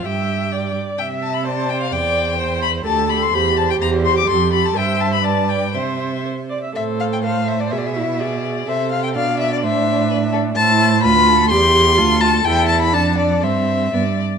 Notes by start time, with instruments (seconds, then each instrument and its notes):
0.05 cello G2, violin G4 G5, viola E5
0.52 viola D5
0.98 cello C3, viola E5, violin E5 G5
1.22 violin A5
1.34 violin B5
1.45 viola C5, violin D5 A5
1.69 violin G5
1.81 violin F5
1.92 cello E2, violin C5 G5, viola D5
2.38 viola C5
2.62 violin B5
2.85 cello D2, violin G4 A5, viola A4
3.08 violin G4 B5
3.23 violin C6
3.33 cello E2, viola G4, violin C5 B5
3.57 violin C5 A5
3.70 violin G5
3.80 cello E2, violin C5 A#5
4.04 violin C5 C6
4.18 violin D6
4.29 cello F2, violin A4 C6
4.53 violin A4 B5
4.66 violin A5
4.76 cello G2, violin C5 G5, viola E5
5.00 violin A5
5.13 violin B5
5.24 violin B4 A5, viola D5
5.49 violin G5
5.74 cello C3, viola C5, violin C5 E5
6.25 viola C5
6.50 viola D5
6.63 viola E5
6.75 cello A2, viola A4, violin C5 E5
7.00 violin F5
7.13 violin G5
7.24 violin A4 F5, viola C5
7.48 violin E5
7.60 violin D5
7.71 cello B2, viola G#4, violin E5
7.78 violin D5
7.86 violin E5
7.96 viola E4
8.20 viola G#4, violin D5
8.67 cello C3, viola A4, violin C5 E5
8.91 violin F5
9.04 violin G5
9.15 cello B2, viola D4, violin D5 F5
9.40 violin E5
9.53 violin D5
9.63 cello A2, violin C5 E5
10.10 violin B4
10.33 violin A4
10.56 cello A2, viola E4, violin C5 A5
11.03 cello D2, viola F4, violin B4 B5
11.28 violin A4
11.50 cello E2, viola G4, violin G4 C6
11.97 cello D2, viola F4, violin A4
12.21 viola F4, violin A5
12.45 cello E2, viola E4, violin G5
12.68 violin A5
12.82 violin B5
12.93 cello F2, viola D4, violin A4 A5
13.19 violin D5
13.43 cello G2, viola C4, violin C5 E5
13.93 cello G2, viola B3, violin D5